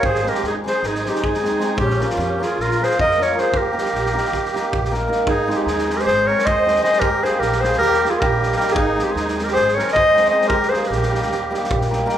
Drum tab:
SD |-oooo-o-oooo-oo-o-|-oooo-o-oooo-oo-o-|--ooooooooo--oo-o-|--o-ooooo--o--oooo|
BD |o-----------o-----|o-----------o-----|o-------o---o-----|o-----------o-----|

SD |--o-ooooooo---oooo|--o-oooooooo--oo-o|-oooooooo-oo-oo-o-|
BD |o-----------o-----|o-----------o-----|o-----------o-----|